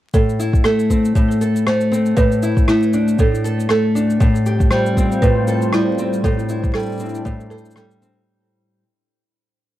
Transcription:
0.14 A2 A4, kick, cabasa
0.29 cabasa
0.39 E4, cabasa
0.53 kick, cabasa
0.64 A3 A4, cross-stick, cabasa
0.79 cabasa
0.90 C4, kick, cabasa
1.05 cabasa
1.15 A2, kick, cabasa
1.31 cabasa
1.41 A4, cabasa
1.56 cabasa
1.67 A3 C5, cross-stick, cabasa
1.81 cabasa
1.92 C4, cabasa
2.06 cabasa
2.17 A2 B4, kick, cabasa
2.32 cabasa
2.43 E4, cabasa
2.57 kick, cabasa
2.68 A3 E4, cross-stick, cabasa
2.83 cabasa
2.93 D4, cabasa
3.08 cabasa
3.19 A2 A4, kick, cabasa
3.35 cabasa
3.44 A4, cabasa
3.60 cabasa
3.69 A3 A4, cross-stick, cabasa
3.95 D4, cabasa
4.10 cabasa
4.20 A2 G3 C4 F4 C5, kick, cabasa
4.35 cabasa
4.46 G4, cabasa
4.60 kick, cabasa
4.71 G3 C5, cross-stick, cabasa
4.86 cabasa
4.97 C4, kick, cabasa
5.12 cabasa
5.22 A2 B4, kick, cabasa
5.48 A4, cabasa
5.62 cabasa
5.73 G3 E4, cross-stick, cabasa
5.98 C4, cabasa
6.13 cabasa
6.24 A2 D4 E4 A4, kick, cabasa
6.39 cabasa
6.49 E4, cabasa
6.64 kick, cabasa
6.74 G3 A4, cross-stick, cabasa
6.79 cabasa
6.82 cabasa
6.86 cabasa
6.89 cabasa
6.92 cabasa
6.95 cabasa
6.97 cabasa
7.00 C4, cabasa
7.05 cabasa
7.09 cabasa
7.14 cabasa
7.25 A2, kick, cabasa
7.40 cabasa
7.50 A4 C5, cabasa
7.58 cabasa
7.65 cabasa
7.71 cabasa
7.76 G3 A4, cross-stick, cabasa
7.91 cabasa
8.02 C4, cabasa

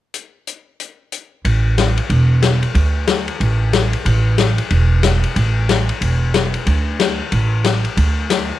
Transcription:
0.14 closed hi-hat
0.47 closed hi-hat
0.80 closed hi-hat
1.12 closed hi-hat
1.45 A1, ride
1.78 snare, hi-hat pedal, ride
1.98 ride
2.10 E1, ride
2.42 snare, hi-hat pedal, ride
2.63 ride
2.75 D2, ride
3.07 snare, hi-hat pedal, ride
3.28 ride
3.40 A1, ride
3.73 snare, hi-hat pedal, ride
3.93 ride
4.05 A1, ride
4.38 snare, hi-hat pedal, ride
4.58 ride
4.70 E1, ride
5.03 snare, hi-hat pedal, ride
5.24 ride
5.36 A1, ride
5.69 snare, hi-hat pedal, ride
5.89 ride
6.01 E1, ride
6.34 snare, hi-hat pedal, ride
6.54 ride
6.66 D2, ride
7.00 snare, hi-hat pedal, ride
7.32 A1, ride
7.64 snare, hi-hat pedal, ride
7.85 ride
7.97 D2, ride
8.30 snare, hi-hat pedal, ride

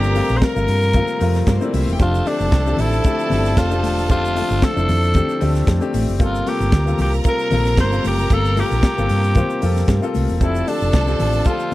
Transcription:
Already playing: G1 C3 F3 G3 A3 A#3 C4 D4 F4 G4 A#4 A#5
0.03 shaker
0.14 A3 A#3 C4 F4, open hi-hat, muted conga, shaker
0.29 A#1, shaker
0.37 C5
0.42 A#4, kick, snare, high conga, shaker
0.54 G1 A3 A#3 C4 F4, shaker
0.68 G2, open hi-hat, shaker
0.82 shaker
0.93 A3 A#3 C4 F4, kick, closed hi-hat, muted conga, low conga, shaker
1.07 shaker
1.20 F2 A3 A#3 C4 F4, open hi-hat, muted conga, shaker
1.34 snare, shaker
1.47 G2 A#3 A#4, kick, snare, closed hi-hat, high conga, shaker
1.56 A3 C4 C5
1.61 A#3 C4 E4, shaker
1.65 D4 D5
1.74 C2 E4 E5, open hi-hat, high conga, shaker
1.83 F4 F5
1.88 E1, shaker
1.92 G4 G5
1.98 F1 D3 F3 A3 C4 D4 F4 G4 A4 A5, kick, closed hi-hat, muted conga, shaker
2.14 shaker
2.25 A3 C4 D4 G4, open hi-hat, muted conga, shaker
2.40 F1, shaker
2.52 C2, kick, snare, closed hi-hat, high conga, shaker
2.66 A3 C4 D4 G4, shaker
2.77 A1 E4, open hi-hat, low conga, shaker
2.92 shaker
3.04 A3 C4 D4 G4, kick, closed hi-hat, muted conga, shaker
3.19 shaker
3.30 G1 A3 C4 D4 G4, open hi-hat, muted conga, low conga, shaker
3.45 snare, shaker
3.57 F1 F4, kick, snare, closed hi-hat, high conga, shaker
3.70 A3 C4 D4 G4, shaker
3.83 E1, open hi-hat, high conga, shaker
3.98 shaker
4.09 F1 A3 C4 D4 F4 G4 E5, kick, closed hi-hat, muted conga, shaker
4.25 shaker
4.35 A3 C4 D4 F4, open hi-hat, muted conga, shaker
4.50 G1, shaker
4.62 A4, kick, snare, closed hi-hat, high conga, shaker
4.75 F1 A3 C4 D4 E4, shaker
4.89 F2, open hi-hat, low conga, shaker
5.03 shaker
5.14 A3 C4 D4 G4, kick, closed hi-hat, muted conga, low conga, shaker
5.29 shaker
5.40 D2 A3 C4 D4 G4, open hi-hat, muted conga, shaker
5.55 snare, shaker
5.67 F2, kick, snare, closed hi-hat, high conga, shaker
5.81 A3 C4 D4 G4, shaker
5.94 A1, open hi-hat, high conga, shaker
6.08 F#1, shaker
6.19 G1 C3 G3 A#3 C4 F4 A4 A#4 A#5, kick, closed hi-hat, muted conga, shaker
6.23 F4
6.35 shaker
6.46 A#3 C4 F4 G4 A4, open hi-hat, muted conga, shaker
6.60 G1, shaker
6.72 D2, kick, snare, closed hi-hat, high conga, shaker
6.86 A#3 C4 F4 A4, shaker
6.98 C2 G4, open hi-hat, low conga, shaker
7.13 shaker
7.24 A#3 C4 F4 A4, kick, closed hi-hat, muted conga, shaker
7.29 A#4
7.39 shaker
7.51 A#1 A#3 C4 F4 A4, open hi-hat, muted conga, low conga, shaker
7.65 snare, shaker
7.77 G1 C5, kick, snare, closed hi-hat, high conga, shaker
7.92 A#3 C4 F4 A4, shaker
8.04 F#1 G4, open hi-hat, high conga, shaker
8.18 shaker
8.30 G1 A#3 C4 F4 A4, kick, closed hi-hat, muted conga, shaker
8.45 shaker
8.56 A#3 C4 F4 G4 A4, open hi-hat, muted conga, shaker
8.71 A#1, shaker
8.83 kick, snare, closed hi-hat, high conga, shaker
8.98 G1 A#3 C4 F4 A4, shaker
9.09 G2, open hi-hat, shaker
9.24 shaker
9.35 A#3 C4 F4 C5, kick, closed hi-hat, muted conga, low conga, shaker
9.50 shaker
9.62 F2 A#3 C4 F4 A4, open hi-hat, shaker
9.76 snare, shaker
9.88 G2, kick, snare, closed hi-hat, high conga, shaker
10.02 A#3 C4 F4 A4, shaker
10.15 C2, open hi-hat, high conga, shaker
10.29 E1, shaker
10.40 F1 D3 F3 C4 D4 E4 G4 A4 A5, kick, closed hi-hat, muted conga, shaker
10.55 shaker
10.67 C4 D4 G4 A4, open hi-hat, muted conga, shaker
10.81 F1, shaker
10.93 C2, kick, snare, closed hi-hat, high conga, shaker
11.07 C4 D4 G4 A4, shaker
11.19 A1, open hi-hat, low conga, shaker
11.33 shaker
11.45 C4 D4 F4 G4 A4, kick, closed hi-hat, muted conga, shaker
11.59 shaker

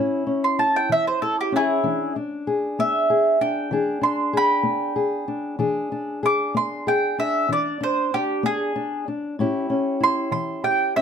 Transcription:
Already playing: A2 C#4 E4
0.27 C#4
0.44 C6
0.59 E4 A5
0.76 G5
0.89 E3 E5
1.07 C5
1.22 E4 A4
1.41 G4
1.52 C#4 E4
1.56 G#4
1.83 E3 D4
2.16 D4
2.47 G#4
2.79 B3 E5
3.10 G#4
3.41 D4 G5
3.71 E3 D4 G#4
4.01 D4 C6
4.33 G#4
4.37 G5 B5
4.63 B3
4.96 G#4
5.28 D4
5.59 E3 D4 G#4
5.92 D4
6.23 G#4 D6
6.54 B3 C6
6.87 G#4 G5
7.18 D4 E5
7.49 E3 D4 D5
7.81 D4 C5
8.14 D4 G4
8.43 B3 G#4
8.76 D4
9.08 D4
9.39 A2 C#4 E4 G4
9.70 C#4
10.00 E4 C6
10.31 E3 C6
10.64 G4 G5
10.96 C#4 E5

